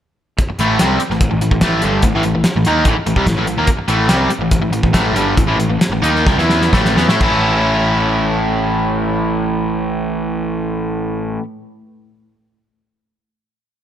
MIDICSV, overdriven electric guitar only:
0, 0, Header, 1, 3, 480
1, 0, Start_track
1, 0, Key_signature, 3, "major"
1, 0, Tempo, 412655
1, 447, Time_signature, 4, 2, 24, 8
1, 5249, Tempo, 437318
1, 7169, Tempo, 481928
1, 14707, End_track
2, 0, Start_track
2, 0, Title_t, "Overdriven electric guitar"
2, 0, Program_c, 0, 29
2, 698, Note_on_c, 0, 45, 97
2, 710, Note_on_c, 0, 52, 93
2, 710, Note_on_c, 0, 57, 116
2, 923, Note_off_c, 0, 45, 0
2, 929, Note_off_c, 0, 52, 0
2, 929, Note_off_c, 0, 57, 0
2, 931, Note_on_c, 0, 48, 94
2, 937, Note_on_c, 0, 55, 82
2, 946, Note_on_c, 0, 60, 86
2, 1159, Note_off_c, 0, 48, 0
2, 1163, Note_off_c, 0, 55, 0
2, 1167, Note_off_c, 0, 60, 0
2, 1295, Note_on_c, 0, 45, 62
2, 1304, Note_on_c, 0, 52, 69
2, 1480, Note_off_c, 0, 45, 0
2, 1484, Note_off_c, 0, 52, 0
2, 1523, Note_on_c, 0, 45, 68
2, 1527, Note_on_c, 0, 52, 63
2, 1636, Note_off_c, 0, 45, 0
2, 1644, Note_off_c, 0, 52, 0
2, 1650, Note_on_c, 0, 45, 55
2, 1656, Note_on_c, 0, 52, 62
2, 1751, Note_off_c, 0, 45, 0
2, 1759, Note_off_c, 0, 52, 0
2, 1765, Note_on_c, 0, 45, 66
2, 1773, Note_on_c, 0, 52, 71
2, 1872, Note_off_c, 0, 45, 0
2, 1878, Note_off_c, 0, 52, 0
2, 1886, Note_on_c, 0, 45, 88
2, 1892, Note_on_c, 0, 52, 96
2, 1906, Note_on_c, 0, 57, 106
2, 2116, Note_off_c, 0, 45, 0
2, 2118, Note_off_c, 0, 52, 0
2, 2124, Note_on_c, 0, 43, 89
2, 2125, Note_off_c, 0, 57, 0
2, 2133, Note_on_c, 0, 50, 97
2, 2142, Note_on_c, 0, 55, 91
2, 2354, Note_off_c, 0, 43, 0
2, 2359, Note_off_c, 0, 50, 0
2, 2363, Note_off_c, 0, 55, 0
2, 2377, Note_on_c, 0, 45, 67
2, 2382, Note_on_c, 0, 52, 70
2, 2488, Note_off_c, 0, 45, 0
2, 2491, Note_off_c, 0, 52, 0
2, 2504, Note_on_c, 0, 45, 93
2, 2512, Note_on_c, 0, 52, 94
2, 2600, Note_off_c, 0, 45, 0
2, 2605, Note_off_c, 0, 52, 0
2, 2614, Note_on_c, 0, 45, 72
2, 2619, Note_on_c, 0, 52, 83
2, 2717, Note_off_c, 0, 45, 0
2, 2719, Note_off_c, 0, 52, 0
2, 2731, Note_on_c, 0, 45, 55
2, 2733, Note_on_c, 0, 52, 61
2, 2838, Note_off_c, 0, 45, 0
2, 2846, Note_off_c, 0, 52, 0
2, 2984, Note_on_c, 0, 45, 63
2, 2995, Note_on_c, 0, 52, 80
2, 3091, Note_off_c, 0, 45, 0
2, 3097, Note_off_c, 0, 52, 0
2, 3102, Note_on_c, 0, 51, 93
2, 3107, Note_on_c, 0, 58, 97
2, 3117, Note_on_c, 0, 63, 100
2, 3322, Note_off_c, 0, 51, 0
2, 3326, Note_off_c, 0, 58, 0
2, 3327, Note_on_c, 0, 45, 87
2, 3331, Note_off_c, 0, 63, 0
2, 3339, Note_on_c, 0, 52, 92
2, 3436, Note_off_c, 0, 45, 0
2, 3442, Note_off_c, 0, 52, 0
2, 3569, Note_on_c, 0, 45, 55
2, 3572, Note_on_c, 0, 52, 67
2, 3677, Note_off_c, 0, 45, 0
2, 3681, Note_on_c, 0, 48, 97
2, 3686, Note_off_c, 0, 52, 0
2, 3697, Note_on_c, 0, 55, 92
2, 3793, Note_off_c, 0, 48, 0
2, 3801, Note_off_c, 0, 55, 0
2, 3804, Note_on_c, 0, 45, 61
2, 3811, Note_on_c, 0, 52, 72
2, 3906, Note_off_c, 0, 45, 0
2, 3917, Note_off_c, 0, 52, 0
2, 3920, Note_on_c, 0, 45, 83
2, 3931, Note_on_c, 0, 52, 85
2, 4021, Note_off_c, 0, 45, 0
2, 4027, Note_off_c, 0, 52, 0
2, 4035, Note_on_c, 0, 45, 65
2, 4041, Note_on_c, 0, 52, 70
2, 4156, Note_off_c, 0, 45, 0
2, 4160, Note_on_c, 0, 51, 93
2, 4161, Note_off_c, 0, 52, 0
2, 4172, Note_on_c, 0, 58, 109
2, 4274, Note_off_c, 0, 51, 0
2, 4279, Note_off_c, 0, 58, 0
2, 4512, Note_on_c, 0, 45, 99
2, 4519, Note_on_c, 0, 52, 102
2, 4532, Note_on_c, 0, 57, 102
2, 4743, Note_off_c, 0, 45, 0
2, 4748, Note_on_c, 0, 48, 78
2, 4755, Note_off_c, 0, 52, 0
2, 4761, Note_on_c, 0, 55, 92
2, 4762, Note_off_c, 0, 57, 0
2, 4767, Note_on_c, 0, 60, 103
2, 4992, Note_off_c, 0, 48, 0
2, 4998, Note_off_c, 0, 55, 0
2, 5001, Note_off_c, 0, 60, 0
2, 5132, Note_on_c, 0, 45, 65
2, 5140, Note_on_c, 0, 52, 71
2, 5322, Note_off_c, 0, 45, 0
2, 5326, Note_off_c, 0, 52, 0
2, 5364, Note_on_c, 0, 45, 69
2, 5371, Note_on_c, 0, 52, 74
2, 5469, Note_off_c, 0, 45, 0
2, 5474, Note_off_c, 0, 52, 0
2, 5483, Note_on_c, 0, 45, 61
2, 5487, Note_on_c, 0, 52, 62
2, 5590, Note_off_c, 0, 45, 0
2, 5594, Note_off_c, 0, 52, 0
2, 5603, Note_on_c, 0, 45, 63
2, 5607, Note_on_c, 0, 52, 70
2, 5698, Note_off_c, 0, 45, 0
2, 5701, Note_off_c, 0, 52, 0
2, 5711, Note_on_c, 0, 45, 99
2, 5714, Note_on_c, 0, 52, 101
2, 5723, Note_on_c, 0, 57, 95
2, 5943, Note_off_c, 0, 45, 0
2, 5944, Note_off_c, 0, 52, 0
2, 5945, Note_on_c, 0, 43, 96
2, 5949, Note_off_c, 0, 57, 0
2, 5949, Note_on_c, 0, 50, 94
2, 5957, Note_on_c, 0, 55, 107
2, 6180, Note_off_c, 0, 43, 0
2, 6182, Note_off_c, 0, 50, 0
2, 6186, Note_off_c, 0, 55, 0
2, 6187, Note_on_c, 0, 45, 58
2, 6192, Note_on_c, 0, 52, 70
2, 6292, Note_off_c, 0, 45, 0
2, 6301, Note_off_c, 0, 52, 0
2, 6305, Note_on_c, 0, 45, 90
2, 6314, Note_on_c, 0, 52, 101
2, 6422, Note_off_c, 0, 45, 0
2, 6426, Note_off_c, 0, 52, 0
2, 6438, Note_on_c, 0, 45, 79
2, 6439, Note_on_c, 0, 52, 75
2, 6538, Note_off_c, 0, 45, 0
2, 6546, Note_off_c, 0, 52, 0
2, 6552, Note_on_c, 0, 45, 68
2, 6559, Note_on_c, 0, 52, 65
2, 6648, Note_off_c, 0, 45, 0
2, 6678, Note_off_c, 0, 52, 0
2, 6797, Note_on_c, 0, 45, 62
2, 6805, Note_on_c, 0, 52, 78
2, 6901, Note_off_c, 0, 45, 0
2, 6905, Note_off_c, 0, 52, 0
2, 6906, Note_on_c, 0, 51, 92
2, 6910, Note_on_c, 0, 58, 93
2, 6922, Note_on_c, 0, 63, 88
2, 7155, Note_off_c, 0, 51, 0
2, 7157, Note_off_c, 0, 58, 0
2, 7163, Note_off_c, 0, 63, 0
2, 7174, Note_on_c, 0, 48, 96
2, 7182, Note_on_c, 0, 55, 98
2, 7280, Note_off_c, 0, 48, 0
2, 7284, Note_off_c, 0, 55, 0
2, 7290, Note_on_c, 0, 52, 82
2, 7296, Note_on_c, 0, 59, 87
2, 7298, Note_on_c, 0, 64, 99
2, 7626, Note_off_c, 0, 52, 0
2, 7632, Note_off_c, 0, 59, 0
2, 7633, Note_off_c, 0, 64, 0
2, 7634, Note_on_c, 0, 45, 93
2, 7638, Note_on_c, 0, 52, 90
2, 7646, Note_on_c, 0, 57, 101
2, 7861, Note_off_c, 0, 52, 0
2, 7863, Note_off_c, 0, 45, 0
2, 7869, Note_off_c, 0, 57, 0
2, 7873, Note_on_c, 0, 52, 97
2, 7877, Note_on_c, 0, 59, 103
2, 7984, Note_off_c, 0, 52, 0
2, 7986, Note_off_c, 0, 59, 0
2, 7993, Note_on_c, 0, 57, 93
2, 7999, Note_on_c, 0, 64, 108
2, 8105, Note_off_c, 0, 57, 0
2, 8108, Note_off_c, 0, 64, 0
2, 8111, Note_on_c, 0, 45, 93
2, 8122, Note_on_c, 0, 52, 78
2, 8129, Note_on_c, 0, 57, 81
2, 8140, Note_on_c, 0, 61, 101
2, 8146, Note_on_c, 0, 64, 112
2, 12303, Note_off_c, 0, 45, 0
2, 12313, Note_off_c, 0, 52, 0
2, 12320, Note_off_c, 0, 57, 0
2, 12331, Note_off_c, 0, 61, 0
2, 12337, Note_off_c, 0, 64, 0
2, 14707, End_track
3, 0, Start_track
3, 0, Title_t, "Muted overdriven electric guitar strokes"
3, 453, Note_on_c, 9, 29, 55
3, 569, Note_off_c, 9, 29, 0
3, 580, Note_on_c, 9, 29, 64
3, 696, Note_off_c, 9, 29, 0
3, 1175, Note_on_c, 9, 29, 57
3, 1292, Note_off_c, 9, 29, 0
3, 2851, Note_on_c, 9, 29, 58
3, 2968, Note_off_c, 9, 29, 0
3, 3449, Note_on_c, 9, 29, 61
3, 3565, Note_off_c, 9, 29, 0
3, 4284, Note_on_c, 9, 29, 55
3, 4400, Note_off_c, 9, 29, 0
3, 4405, Note_on_c, 9, 29, 64
3, 4521, Note_off_c, 9, 29, 0
3, 5007, Note_on_c, 9, 29, 64
3, 5123, Note_off_c, 9, 29, 0
3, 6661, Note_on_c, 9, 29, 57
3, 6771, Note_off_c, 9, 29, 0
3, 14707, End_track
0, 0, End_of_file